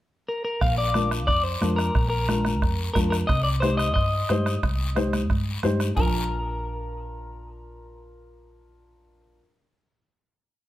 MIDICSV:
0, 0, Header, 1, 6, 480
1, 0, Start_track
1, 0, Key_signature, -2, "major"
1, 0, Tempo, 334448
1, 884, Time_signature, 4, 2, 24, 8
1, 15337, End_track
2, 0, Start_track
2, 0, Title_t, "Clean electric guitar"
2, 0, Program_c, 0, 27
2, 409, Note_on_c, 0, 70, 79
2, 622, Note_off_c, 0, 70, 0
2, 639, Note_on_c, 0, 70, 84
2, 865, Note_off_c, 0, 70, 0
2, 882, Note_on_c, 0, 77, 89
2, 1114, Note_off_c, 0, 77, 0
2, 1120, Note_on_c, 0, 74, 89
2, 1568, Note_off_c, 0, 74, 0
2, 1824, Note_on_c, 0, 74, 92
2, 2060, Note_off_c, 0, 74, 0
2, 2060, Note_on_c, 0, 72, 98
2, 2524, Note_off_c, 0, 72, 0
2, 2530, Note_on_c, 0, 70, 91
2, 2992, Note_off_c, 0, 70, 0
2, 3007, Note_on_c, 0, 70, 79
2, 4196, Note_off_c, 0, 70, 0
2, 4213, Note_on_c, 0, 70, 84
2, 4285, Note_off_c, 0, 70, 0
2, 4455, Note_on_c, 0, 70, 78
2, 4526, Note_off_c, 0, 70, 0
2, 4696, Note_on_c, 0, 75, 94
2, 4923, Note_off_c, 0, 75, 0
2, 4929, Note_on_c, 0, 74, 75
2, 5001, Note_off_c, 0, 74, 0
2, 5171, Note_on_c, 0, 72, 88
2, 5411, Note_off_c, 0, 72, 0
2, 5417, Note_on_c, 0, 75, 100
2, 5634, Note_off_c, 0, 75, 0
2, 5652, Note_on_c, 0, 75, 90
2, 8015, Note_off_c, 0, 75, 0
2, 8561, Note_on_c, 0, 70, 71
2, 13463, Note_off_c, 0, 70, 0
2, 15337, End_track
3, 0, Start_track
3, 0, Title_t, "Upright piano"
3, 0, Program_c, 1, 0
3, 1362, Note_on_c, 1, 62, 61
3, 1372, Note_on_c, 1, 65, 58
3, 1375, Note_on_c, 1, 70, 64
3, 1699, Note_off_c, 1, 62, 0
3, 1704, Note_off_c, 1, 65, 0
3, 1705, Note_off_c, 1, 70, 0
3, 2310, Note_on_c, 1, 62, 71
3, 2316, Note_on_c, 1, 65, 62
3, 2320, Note_on_c, 1, 70, 77
3, 2653, Note_off_c, 1, 62, 0
3, 2656, Note_off_c, 1, 65, 0
3, 2658, Note_off_c, 1, 70, 0
3, 3277, Note_on_c, 1, 62, 61
3, 3284, Note_on_c, 1, 65, 59
3, 3286, Note_on_c, 1, 70, 70
3, 3617, Note_off_c, 1, 62, 0
3, 3620, Note_off_c, 1, 65, 0
3, 3621, Note_off_c, 1, 70, 0
3, 4234, Note_on_c, 1, 62, 69
3, 4239, Note_on_c, 1, 65, 62
3, 4251, Note_on_c, 1, 70, 78
3, 4576, Note_off_c, 1, 62, 0
3, 4578, Note_off_c, 1, 65, 0
3, 4584, Note_off_c, 1, 70, 0
3, 5200, Note_on_c, 1, 63, 70
3, 5208, Note_on_c, 1, 67, 62
3, 5213, Note_on_c, 1, 72, 74
3, 5540, Note_off_c, 1, 63, 0
3, 5544, Note_off_c, 1, 67, 0
3, 5546, Note_off_c, 1, 72, 0
3, 6163, Note_on_c, 1, 63, 62
3, 6164, Note_on_c, 1, 67, 60
3, 6172, Note_on_c, 1, 72, 83
3, 6502, Note_off_c, 1, 63, 0
3, 6502, Note_off_c, 1, 67, 0
3, 6506, Note_off_c, 1, 72, 0
3, 7109, Note_on_c, 1, 63, 80
3, 7120, Note_on_c, 1, 67, 65
3, 7125, Note_on_c, 1, 72, 78
3, 7455, Note_off_c, 1, 63, 0
3, 7461, Note_off_c, 1, 67, 0
3, 7463, Note_off_c, 1, 72, 0
3, 8079, Note_on_c, 1, 63, 80
3, 8085, Note_on_c, 1, 67, 72
3, 8090, Note_on_c, 1, 72, 78
3, 8420, Note_off_c, 1, 63, 0
3, 8423, Note_off_c, 1, 67, 0
3, 8426, Note_off_c, 1, 72, 0
3, 8537, Note_on_c, 1, 62, 75
3, 8570, Note_on_c, 1, 65, 68
3, 8597, Note_on_c, 1, 70, 86
3, 13439, Note_off_c, 1, 62, 0
3, 13472, Note_off_c, 1, 65, 0
3, 13498, Note_off_c, 1, 70, 0
3, 15337, End_track
4, 0, Start_track
4, 0, Title_t, "Fingered electric bass"
4, 0, Program_c, 2, 33
4, 881, Note_on_c, 2, 34, 84
4, 1841, Note_off_c, 2, 34, 0
4, 1841, Note_on_c, 2, 41, 85
4, 2226, Note_off_c, 2, 41, 0
4, 2331, Note_on_c, 2, 41, 83
4, 2712, Note_off_c, 2, 41, 0
4, 2803, Note_on_c, 2, 34, 84
4, 3759, Note_off_c, 2, 34, 0
4, 3759, Note_on_c, 2, 41, 85
4, 4146, Note_off_c, 2, 41, 0
4, 4241, Note_on_c, 2, 41, 89
4, 4627, Note_off_c, 2, 41, 0
4, 4725, Note_on_c, 2, 36, 91
4, 5680, Note_off_c, 2, 36, 0
4, 5680, Note_on_c, 2, 43, 95
4, 6067, Note_off_c, 2, 43, 0
4, 6167, Note_on_c, 2, 43, 87
4, 6552, Note_off_c, 2, 43, 0
4, 6645, Note_on_c, 2, 36, 89
4, 7604, Note_off_c, 2, 36, 0
4, 7604, Note_on_c, 2, 43, 88
4, 7991, Note_off_c, 2, 43, 0
4, 8102, Note_on_c, 2, 43, 82
4, 8481, Note_off_c, 2, 43, 0
4, 8563, Note_on_c, 2, 34, 82
4, 13464, Note_off_c, 2, 34, 0
4, 15337, End_track
5, 0, Start_track
5, 0, Title_t, "Two-headed folk drums"
5, 879, Note_on_c, 9, 36, 74
5, 880, Note_on_c, 9, 37, 77
5, 1022, Note_off_c, 9, 36, 0
5, 1024, Note_off_c, 9, 37, 0
5, 1351, Note_on_c, 9, 37, 84
5, 1495, Note_off_c, 9, 37, 0
5, 1598, Note_on_c, 9, 37, 74
5, 1741, Note_off_c, 9, 37, 0
5, 1833, Note_on_c, 9, 37, 69
5, 1836, Note_on_c, 9, 36, 74
5, 1977, Note_off_c, 9, 37, 0
5, 1980, Note_off_c, 9, 36, 0
5, 2322, Note_on_c, 9, 37, 73
5, 2466, Note_off_c, 9, 37, 0
5, 2561, Note_on_c, 9, 37, 79
5, 2704, Note_off_c, 9, 37, 0
5, 2798, Note_on_c, 9, 36, 77
5, 2799, Note_on_c, 9, 37, 77
5, 2941, Note_off_c, 9, 36, 0
5, 2942, Note_off_c, 9, 37, 0
5, 3281, Note_on_c, 9, 37, 84
5, 3424, Note_off_c, 9, 37, 0
5, 3512, Note_on_c, 9, 37, 79
5, 3655, Note_off_c, 9, 37, 0
5, 3760, Note_on_c, 9, 36, 73
5, 3763, Note_on_c, 9, 37, 71
5, 3903, Note_off_c, 9, 36, 0
5, 3906, Note_off_c, 9, 37, 0
5, 4237, Note_on_c, 9, 37, 69
5, 4239, Note_on_c, 9, 36, 70
5, 4381, Note_off_c, 9, 37, 0
5, 4382, Note_off_c, 9, 36, 0
5, 4482, Note_on_c, 9, 37, 77
5, 4625, Note_off_c, 9, 37, 0
5, 4721, Note_on_c, 9, 36, 81
5, 4722, Note_on_c, 9, 37, 78
5, 4864, Note_off_c, 9, 36, 0
5, 4866, Note_off_c, 9, 37, 0
5, 5199, Note_on_c, 9, 37, 87
5, 5343, Note_off_c, 9, 37, 0
5, 5443, Note_on_c, 9, 37, 79
5, 5586, Note_off_c, 9, 37, 0
5, 5677, Note_on_c, 9, 37, 65
5, 5680, Note_on_c, 9, 36, 71
5, 5821, Note_off_c, 9, 37, 0
5, 5823, Note_off_c, 9, 36, 0
5, 6159, Note_on_c, 9, 37, 76
5, 6302, Note_off_c, 9, 37, 0
5, 6402, Note_on_c, 9, 37, 77
5, 6546, Note_off_c, 9, 37, 0
5, 6645, Note_on_c, 9, 36, 83
5, 6649, Note_on_c, 9, 37, 86
5, 6789, Note_off_c, 9, 36, 0
5, 6792, Note_off_c, 9, 37, 0
5, 7124, Note_on_c, 9, 37, 81
5, 7267, Note_off_c, 9, 37, 0
5, 7366, Note_on_c, 9, 37, 85
5, 7510, Note_off_c, 9, 37, 0
5, 7605, Note_on_c, 9, 36, 77
5, 7605, Note_on_c, 9, 37, 71
5, 7748, Note_off_c, 9, 36, 0
5, 7748, Note_off_c, 9, 37, 0
5, 8082, Note_on_c, 9, 37, 73
5, 8226, Note_off_c, 9, 37, 0
5, 8324, Note_on_c, 9, 37, 72
5, 8467, Note_off_c, 9, 37, 0
5, 8566, Note_on_c, 9, 36, 95
5, 8709, Note_off_c, 9, 36, 0
5, 15337, End_track
6, 0, Start_track
6, 0, Title_t, "Drums"
6, 896, Note_on_c, 9, 74, 61
6, 1040, Note_off_c, 9, 74, 0
6, 1364, Note_on_c, 9, 63, 77
6, 1371, Note_on_c, 9, 73, 62
6, 1508, Note_off_c, 9, 63, 0
6, 1515, Note_off_c, 9, 73, 0
6, 1608, Note_on_c, 9, 73, 64
6, 1752, Note_off_c, 9, 73, 0
6, 1845, Note_on_c, 9, 74, 64
6, 1988, Note_off_c, 9, 74, 0
6, 2319, Note_on_c, 9, 63, 79
6, 2330, Note_on_c, 9, 73, 65
6, 2462, Note_off_c, 9, 63, 0
6, 2473, Note_off_c, 9, 73, 0
6, 2574, Note_on_c, 9, 73, 71
6, 2718, Note_off_c, 9, 73, 0
6, 2820, Note_on_c, 9, 74, 61
6, 2963, Note_off_c, 9, 74, 0
6, 3284, Note_on_c, 9, 63, 82
6, 3296, Note_on_c, 9, 73, 63
6, 3427, Note_off_c, 9, 63, 0
6, 3439, Note_off_c, 9, 73, 0
6, 3534, Note_on_c, 9, 63, 69
6, 3536, Note_on_c, 9, 73, 68
6, 3677, Note_off_c, 9, 63, 0
6, 3680, Note_off_c, 9, 73, 0
6, 3782, Note_on_c, 9, 74, 65
6, 3926, Note_off_c, 9, 74, 0
6, 4246, Note_on_c, 9, 63, 80
6, 4253, Note_on_c, 9, 73, 65
6, 4389, Note_off_c, 9, 63, 0
6, 4397, Note_off_c, 9, 73, 0
6, 4495, Note_on_c, 9, 73, 74
6, 4639, Note_off_c, 9, 73, 0
6, 4731, Note_on_c, 9, 74, 68
6, 4875, Note_off_c, 9, 74, 0
6, 5208, Note_on_c, 9, 63, 72
6, 5211, Note_on_c, 9, 73, 63
6, 5352, Note_off_c, 9, 63, 0
6, 5354, Note_off_c, 9, 73, 0
6, 5449, Note_on_c, 9, 73, 65
6, 5593, Note_off_c, 9, 73, 0
6, 5695, Note_on_c, 9, 74, 69
6, 5839, Note_off_c, 9, 74, 0
6, 6171, Note_on_c, 9, 63, 78
6, 6174, Note_on_c, 9, 73, 62
6, 6315, Note_off_c, 9, 63, 0
6, 6318, Note_off_c, 9, 73, 0
6, 6412, Note_on_c, 9, 73, 72
6, 6555, Note_off_c, 9, 73, 0
6, 6653, Note_on_c, 9, 74, 64
6, 6797, Note_off_c, 9, 74, 0
6, 7130, Note_on_c, 9, 63, 83
6, 7131, Note_on_c, 9, 73, 65
6, 7273, Note_off_c, 9, 63, 0
6, 7274, Note_off_c, 9, 73, 0
6, 7369, Note_on_c, 9, 63, 72
6, 7371, Note_on_c, 9, 73, 71
6, 7512, Note_off_c, 9, 63, 0
6, 7515, Note_off_c, 9, 73, 0
6, 7620, Note_on_c, 9, 74, 63
6, 7763, Note_off_c, 9, 74, 0
6, 8086, Note_on_c, 9, 63, 81
6, 8097, Note_on_c, 9, 73, 65
6, 8229, Note_off_c, 9, 63, 0
6, 8241, Note_off_c, 9, 73, 0
6, 8331, Note_on_c, 9, 73, 75
6, 8474, Note_off_c, 9, 73, 0
6, 8565, Note_on_c, 9, 64, 77
6, 8576, Note_on_c, 9, 74, 89
6, 8709, Note_off_c, 9, 64, 0
6, 8720, Note_off_c, 9, 74, 0
6, 15337, End_track
0, 0, End_of_file